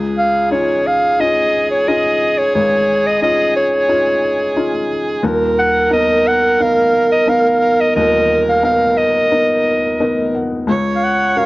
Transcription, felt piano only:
Already playing: C#2
0.51 C#4 D#4 F4
1.20 C#4 D#4 F4
1.88 C#4 D#4 F4
2.55 G#1
3.22 C#4 D#4 F4
3.89 C#4 D#4 F4
4.56 C#4 D#4 F4
5.23 D#1 D#2
5.90 B3 D#4 A#4
6.60 B3 D#4 A#4
7.27 B3 D#4 A#4
7.96 D#1 D#2
8.63 B3 D#4 A#4
9.31 B3 D#4 A#4
10.00 B3 D#4 A#4 D#5
10.35 F#5
10.67 C#2
11.36 C#4 F#4 A#4

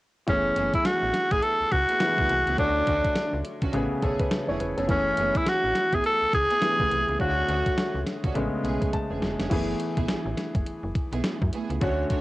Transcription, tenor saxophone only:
0.29 C#4
0.74 E4
0.86 F#4
1.32 G#4
1.43 A4
1.72 F#4
2.59 D4
4.90 C#4
5.37 E4
5.48 F#4
5.95 G#4
6.06 A4
6.34 G#4
7.21 F#4

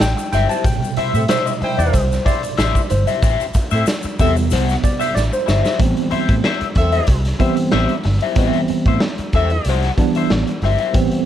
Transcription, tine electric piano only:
0.01 G5
0.33 G5
0.49 A5
0.64 B2 C3 G3 G5
0.97 E5
1.15 E5
1.30 C5
1.46 D#5
1.79 D5
1.93 C5
2.26 D5
2.90 C5
4.19 C3 G3 B3
4.84 D5
5.01 E5
5.15 D5
5.33 C5
5.79 E3 G3 B3 C4
7.39 E3 G3 B3 C4
8.36 E3 G3 B3 C4
9.97 E3 G3 B3 D4
10.93 E3 G3 B3 C4

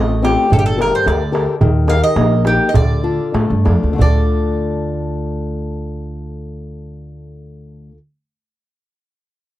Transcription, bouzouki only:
Already playing: D#5
0.25 G4
0.53 A4
0.59 G4
0.66 A4
0.82 A#4
0.95 C5
1.08 D5
1.90 F5
2.04 D#5
2.47 G4
2.69 D#5
2.75 D5
4.01 D5

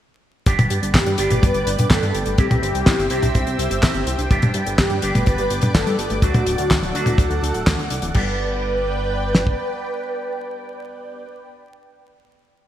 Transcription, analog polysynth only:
0.95 G4
1.43 B4
1.91 A4
2.39 G4
2.63 G4
4.79 G4
5.27 B4
5.75 A4
6.11 G4
6.23 F#4
8.15 B4

